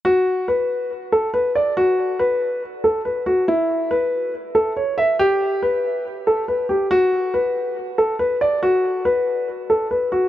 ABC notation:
X:1
M:4/4
L:1/8
Q:1/4=140
K:Bm
V:1 name="Grand piano"
F2 B2 z A B d | F2 B2 z A B F | E2 B2 z A c e | G2 B2 z A B G |
F2 B2 z A B d | F2 B2 z A B F |]